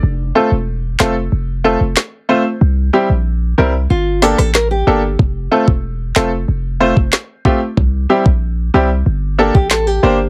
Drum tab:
CP |------x-----x---|------------x---|------x-----x---|------------x---|
SD |------o-----o---|----------oro---|------o-----o---|------------o---|
BD |----------------|----------------|o--o-------o--o-|o--o-------o----|